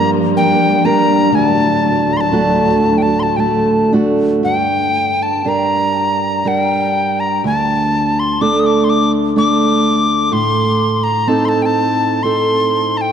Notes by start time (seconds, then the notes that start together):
Already playing: G2 F3 G3 A#3 D4 A#4 A#5
0.37 D4 G5
0.85 G3 D4 A#4 A#5
1.31 D2 A2 F#3
1.35 A5
2.13 A#5 C6
2.21 A5
2.32 A3 D4 F#4
2.98 G5
3.03 A5
3.20 A5 C6
3.37 A3 G5 A5
3.93 A3 D4 F#4
4.43 G2 G5
5.23 A5
5.45 G3 D4 A#4 A#5
6.45 G3 D4 A#4 G5
7.20 A#5
7.44 D2 A5
8.19 C6
8.41 A3 D4 A4 D6
8.60 D#6
8.66 D6
8.84 C6
8.90 D6
9.36 A3 D4 A4 D6
10.32 A2 C6
11.04 A#5
11.27 C4 D#4 A4 A5
11.45 A5 C6
11.62 G5 A5
12.23 C4 D#4 A4 C6
12.97 A5
13.01 G5